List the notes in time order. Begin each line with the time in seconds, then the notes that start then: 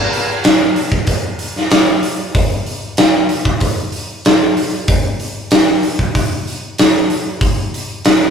0.13 open hi-hat
0.44 snare, open hi-hat
0.76 open hi-hat
0.92 kick
1.07 kick, open hi-hat
1.39 open hi-hat
1.56 snare
1.71 snare, open hi-hat
2.03 open hi-hat
2.35 kick, open hi-hat
2.66 open hi-hat
2.97 snare, open hi-hat
3.29 open hi-hat
3.45 kick
3.60 kick, open hi-hat
3.92 open hi-hat
4.25 snare, open hi-hat
4.57 open hi-hat
4.88 kick, open hi-hat
5.20 open hi-hat
5.51 snare, open hi-hat
5.83 open hi-hat
5.99 kick
6.15 kick, open hi-hat
6.47 open hi-hat
6.78 snare, open hi-hat
7.10 open hi-hat
7.41 kick, open hi-hat
7.74 open hi-hat
8.05 snare, open hi-hat